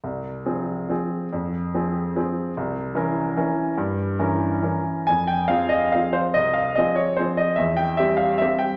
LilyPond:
\new Staff \with { instrumentName = "Upright piano" } { \time 3/4 \key f \minor \tempo 4 = 144 << { r2. | r2. | r2. | r2. |
aes''8 g''8 f''8 ees''8 f''8 c''8 | ees''8 f''8 ees''8 des''8 c''8 ees''8 | e''8 g''8 e''8 f''8 e''8 g''8 | } \\ { c,4 <f c' aes'>4 <f c' aes'>4 | f,4 <f c' aes'>4 <f c' aes'>4 | c,4 <e des' bes'>4 <e des' bes'>4 | g,4 <e des' bes'>4 <e des' bes'>4 |
f,4 <f c' aes'>4 <f c' aes'>4 | c,4 <f c' aes'>4 <f c' aes'>4 | e,4 <g c' g'>4 <g c' g'>4 | } >> }